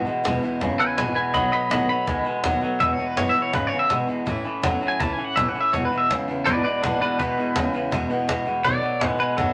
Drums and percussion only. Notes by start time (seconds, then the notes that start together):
0.25 cajon slap
0.61 cajon bass, cajon slap
0.80 cajon slap
0.89 cajon slap
0.98 cajon slap
1.16 cajon slap
1.34 cajon bass, cajon slap
1.71 cajon slap
1.89 cajon slap
2.07 cajon bass, cajon slap
2.26 cajon slap
2.44 cajon slap
2.62 cajon slap
2.80 cajon bass, cajon slap
3.17 cajon slap
3.35 cajon slap
3.53 cajon bass, cajon slap
3.72 cajon slap
3.90 cajon slap
4.08 cajon slap
4.27 cajon bass, cajon slap
4.36 cajon slap
4.46 cajon slap
4.55 cajon slap
4.63 cajon bass, cajon slap
4.82 cajon slap
5.00 cajon bass, cajon slap
5.19 cajon slap
5.28 cajon slap
5.37 cajon bass, cajon slap
5.56 cajon slap
5.74 cajon bass, cajon slap
5.83 cajon slap
6.02 cajon slap
6.10 cajon bass, cajon slap
6.29 cajon slap
6.47 cajon bass, cajon slap
6.66 cajon slap
6.75 cajon slap
6.83 cajon bass, cajon slap
7.02 cajon slap
7.19 cajon bass, cajon slap
7.29 cajon slap
7.47 cajon slap
7.56 cajon bass, cajon slap
7.92 cajon bass, cajon slap
8.01 cajon slap
8.11 cajon slap
8.20 cajon slap
8.29 cajon bass, cajon slap
8.65 cajon bass, cajon slap
8.93 cajon slap
9.01 cajon bass, cajon slap
9.20 cajon slap
9.38 cajon bass, cajon slap
9.47 cajon slap